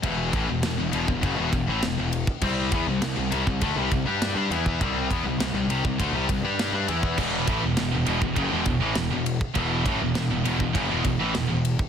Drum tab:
CC |----------------|x---------------|----------------|x---------------|
RD |x-x-x-x-x-x-x-x-|--x-x-x-x-x-x-x-|x-x-x-x-x-x-x-x-|--x-x-x-x-x-x-x-|
SD |----o-------o---|----o-------o---|----o-------o---|----o-------o---|
BD |o-o----oo-o----o|o-o----oo-o----o|o-o----oo-o----o|o-o----oo-o----o|

CC |----------------|
RD |x-x-x-x-x-x-x-x-|
SD |----o-------o---|
BD |o-o----oo-o----o|